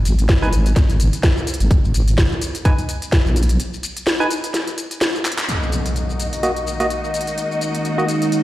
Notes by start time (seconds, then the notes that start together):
0.05 G#1, open hi-hat, shaker
0.19 closed hi-hat, shaker
0.29 kick, snare, closed hi-hat, shaker
0.42 G#1 D#4 B4 G#5, shaker
0.53 G#1, open hi-hat, shaker
0.66 closed hi-hat, shaker
0.76 G#1, kick, snare, closed hi-hat, shaker
0.90 closed hi-hat, shaker
1.00 open hi-hat, shaker
1.13 closed hi-hat, shaker
1.23 kick, snare, closed hi-hat, shaker
1.37 shaker
1.47 open hi-hat, shaker
1.54 closed hi-hat
1.60 G#1, closed hi-hat, shaker
1.71 G#1, kick, closed hi-hat, shaker
1.84 G#1, shaker
1.94 G#1, open hi-hat, shaker
2.08 closed hi-hat, shaker
2.18 kick, snare, closed hi-hat, shaker
2.32 shaker
2.42 open hi-hat, shaker
2.55 closed hi-hat, shaker
2.65 D#4 B4 G#5, kick, closed hi-hat, shaker
2.78 closed hi-hat, shaker
2.89 open hi-hat, shaker
3.02 closed hi-hat, shaker
3.12 kick, snare, closed hi-hat, shaker
3.26 A#1, shaker
3.36 open hi-hat, shaker
3.43 closed hi-hat
3.49 closed hi-hat, shaker
3.60 closed hi-hat, shaker
3.74 shaker
3.83 open hi-hat, shaker
3.97 closed hi-hat, shaker
4.07 snare, closed hi-hat, shaker
4.20 D#4 B4 G#5, shaker
4.31 open hi-hat, shaker
4.44 closed hi-hat, shaker
4.54 snare, closed hi-hat, shaker
4.67 closed hi-hat, shaker
4.78 open hi-hat, shaker
4.91 closed hi-hat, shaker
5.01 snare, closed hi-hat, shaker
5.15 shaker
5.25 clap, open hi-hat, shaker
5.32 closed hi-hat
5.38 clap, closed hi-hat, shaker
5.49 A#3 D#4 F#4 D#5, closed hi-hat, impact, shaker
5.63 shaker
5.72 closed hi-hat, shaker
5.86 closed hi-hat, shaker
5.93 G#4, closed hi-hat, shaker
6.06 C#5
6.10 shaker
6.20 closed hi-hat, shaker
6.25 F#5
6.33 closed hi-hat, shaker
6.43 A#3 F#4 D#5, closed hi-hat, shaker
6.56 closed hi-hat, shaker
6.67 shaker
6.80 A#3 F#4 D#5, closed hi-hat, shaker
6.90 closed hi-hat, shaker
7.04 A#5, shaker
7.14 closed hi-hat, shaker
7.21 closed hi-hat
7.27 closed hi-hat, shaker
7.38 closed hi-hat, shaker
7.52 shaker
7.61 closed hi-hat, shaker
7.75 closed hi-hat, shaker
7.85 closed hi-hat, shaker
7.98 A#3 F#4 D#5, shaker
8.08 closed hi-hat, shaker
8.22 closed hi-hat, shaker
8.32 closed hi-hat, shaker